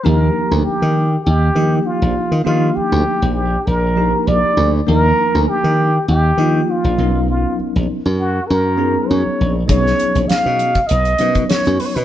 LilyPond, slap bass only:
\new Staff \with { instrumentName = "Slap bass" } { \clef bass \time 4/4 \key ees \major \tempo 4 = 100 ees,8 r16 d,16 r16 ees8. ees,8 ees8 r16 bes,,16 r16 ees16 | ees8 r16 d,16 r16 bes,,8. bes,,4 bes,,16 r16 d,8 | ees,8 r16 d,16 r16 ees8. ees,8 ees8 r16 bes,,16 b,,8~ | b,,8 r16 ais,,16 r16 fis,8. fis,4 fis,16 r16 ais,,8 |
b,,8 r16 ais,,16 r16 b,8. b,,8 b,8 r16 fis,16 r16 b,16 | }